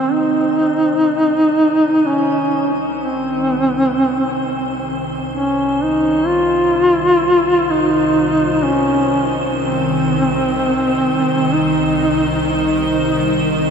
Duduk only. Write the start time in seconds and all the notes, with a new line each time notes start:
Already playing: C4
0.12 D#4
2.07 C#4
3.01 C4
5.34 C#4
5.83 D#4
6.26 F4
7.70 D#4
8.64 C#4
9.60 C4
11.55 D#4
12.53 D#4